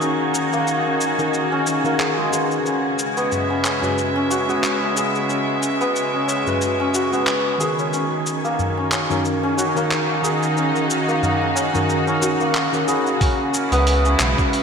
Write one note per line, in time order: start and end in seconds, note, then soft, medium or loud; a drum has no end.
0.00 1.14 D#3 medium
0.00 2.66 D#3 medium
0.00 0.53 A#3 medium
0.00 1.15 C#4 medium
0.00 0.86 C#4 medium
0.00 2.66 D#4 medium
0.00 1.16 F#4 medium
0.00 2.28 F#4 medium
0.00 3.92 F#4 medium
0.00 1.99 G#4 medium
0.00 13.22 G#4 medium
0.00 1.16 A#4 medium
0.00 13.22 G#5 medium
0.00 cabasa soft
0.34 cabasa medium
0.53 1.84 A#3 medium
0.53 cabasa soft
0.67 cabasa soft
0.86 1.52 C#4 medium
1.01 cabasa medium
1.18 1.80 D#3 medium
1.18 1.81 C#4 medium
1.18 1.81 F#4 medium
1.18 1.81 A#4 medium
1.18 cabasa soft
1.34 cabasa soft
1.52 1.66 C#4 medium
1.67 2.65 C#4 medium
1.67 cabasa medium
1.84 2.29 D#3 medium
1.84 3.23 A#3 medium
1.84 2.29 C#4 medium
1.84 2.30 F#4 medium
1.84 2.30 A#4 medium
1.84 cabasa soft
1.99 4.96 G#4 medium
1.99 clap medium
1.99 cabasa soft
2.18 2.31 G#3 medium
2.30 2.71 G#3 medium
2.30 3.77 C#4 medium
2.30 3.79 F#4 medium
2.30 cabasa medium
2.34 3.80 B4 medium
2.51 cabasa soft
2.65 7.93 C#3 medium
2.65 3.50 C#4 medium
2.65 cabasa soft
2.95 7.93 G#3 medium
2.95 cabasa medium
3.17 4.49 B3 medium
3.17 cabasa soft
3.31 7.93 E5 medium
3.31 tabla ge medium
3.31 cabasa soft
3.50 4.15 C#4 medium
3.50 tabla tin soft
3.65 clap medium
3.65 tabla na medium
3.65 cabasa medium
3.82 4.44 C#4 medium
3.82 4.45 F#4 medium
3.82 4.45 B4 medium
3.82 tabla na medium
3.82 tabla ge medium
3.82 cabasa soft
3.98 cabasa soft
4.16 5.29 C#4 medium
4.30 6.94 F#4 medium
4.30 tabla na medium
4.30 tabla tin medium
4.30 cabasa medium
4.48 5.80 B3 medium
4.48 4.93 C#4 medium
4.48 4.93 F#4 medium
4.48 4.94 B4 medium
4.48 tabla tin soft
4.48 cabasa soft
4.64 clap medium
4.64 cabasa soft
4.94 6.41 C#4 medium
4.94 6.42 F#4 medium
4.94 7.60 G#4 medium
4.94 cabasa medium
4.99 6.44 B4 medium
5.15 cabasa soft
5.29 6.13 C#4 medium
5.29 cabasa soft
5.63 cabasa medium
5.81 7.13 B3 medium
5.81 cabasa soft
5.96 cabasa soft
6.13 6.79 C#4 medium
6.13 tabla tin soft
6.28 tabla na medium
6.28 cabasa medium
6.46 7.08 C#4 medium
6.46 7.09 F#4 medium
6.46 7.09 B4 medium
6.46 tabla na medium
6.46 tabla ge medium
6.46 cabasa soft
6.61 cabasa soft
6.80 7.93 C#4 medium
6.94 9.57 F#4 medium
6.94 cabasa medium
7.12 8.51 B3 medium
7.12 7.56 C#4 medium
7.12 7.57 F#4 medium
7.12 7.57 B4 medium
7.12 cabasa soft
7.27 clap medium
7.27 cabasa soft
7.58 9.05 D#3 medium
7.58 9.06 C#4 medium
7.58 9.07 F#4 medium
7.58 10.23 G#4 medium
7.58 9.07 A#4 medium
7.58 cabasa medium
7.79 tabla na medium
7.79 cabasa soft
7.93 13.21 D#3 medium
7.93 8.77 C#4 medium
7.93 cabasa soft
8.26 cabasa medium
8.45 9.76 A#3 medium
8.45 cabasa soft
8.59 tabla ge medium
8.59 cabasa soft
8.77 9.43 C#4 medium
8.77 tabla tin soft
8.92 clap medium
8.92 tabla na medium
8.92 cabasa medium
9.10 9.72 D#3 medium
9.10 9.72 C#4 medium
9.10 9.72 F#4 medium
9.10 9.73 A#4 medium
9.10 tabla na medium
9.10 tabla ge medium
9.10 cabasa soft
9.25 cabasa soft
9.43 10.56 C#4 medium
9.56 13.21 D#4 medium
9.56 12.22 F#4 medium
9.56 tabla na medium
9.56 tabla tin medium
9.56 cabasa medium
9.76 10.20 D#3 medium
9.76 11.08 A#3 medium
9.76 10.20 C#4 medium
9.76 10.21 F#4 medium
9.76 10.21 A#4 medium
9.76 tabla tin soft
9.76 cabasa soft
9.91 clap medium
9.91 cabasa soft
10.04 14.36 F#4 medium
10.22 11.69 D#3 medium
10.22 11.70 C#4 medium
10.22 11.70 F#4 medium
10.22 12.88 G#4 medium
10.22 11.71 A#4 medium
10.22 cabasa medium
10.43 cabasa soft
10.57 11.41 C#4 medium
10.57 cabasa soft
10.76 cabasa soft
10.90 cabasa medium
11.08 12.40 A#3 medium
11.08 cabasa soft
11.23 tabla na soft
11.23 tabla ge medium
11.23 cabasa soft
11.41 12.07 C#4 medium
11.41 tabla tin soft
11.56 tabla na medium
11.56 cabasa medium
11.74 12.19 D#3 medium
11.74 12.19 C#4 medium
11.74 12.19 F#4 medium
11.74 12.20 A#4 medium
11.74 tabla na medium
11.74 tabla tin soft
11.74 tabla ge medium
11.74 cabasa soft
11.89 cabasa soft
12.07 13.20 C#4 medium
12.07 tabla tin medium
12.07 cabasa soft
12.21 12.68 D#3 medium
12.21 12.69 C#4 medium
12.21 14.63 F#4 medium
12.21 12.69 F#4 medium
12.21 12.69 A#4 medium
12.21 cabasa medium
12.40 13.78 A#3 medium
12.40 cabasa soft
12.55 clap medium
12.55 cabasa soft
12.73 12.84 D#3 medium
12.73 12.84 C#4 medium
12.73 12.85 F#4 medium
12.73 12.85 A#4 medium
12.73 tabla na medium
12.73 cabasa soft
12.87 13.54 C#4 medium
12.87 13.54 F#4 medium
12.87 14.63 G#4 medium
12.87 13.55 B5 medium
12.87 cabasa medium
13.06 tabla na medium
13.06 cabasa soft
13.21 14.63 C#3 medium
13.21 14.05 C#4 medium
13.21 kick loud
13.21 open hi-hat medium
13.21 cabasa soft
13.54 cabasa medium
13.60 14.63 E4 medium
13.72 14.15 C#2 loud
13.72 14.63 B3 loud
13.72 open hi-hat soft
13.72 cabasa soft
13.87 open hi-hat medium
13.87 cabasa soft
14.05 14.63 C#4 medium
14.05 cabasa soft
14.18 14.35 B1 medium
14.18 14.63 G#3 medium
14.18 clap medium
14.18 cabasa medium
14.38 14.63 C#4 medium
14.38 14.63 F#4 medium
14.38 14.63 B4 loud
14.38 kick loud
14.38 cabasa soft
14.53 open hi-hat medium
14.53 cabasa soft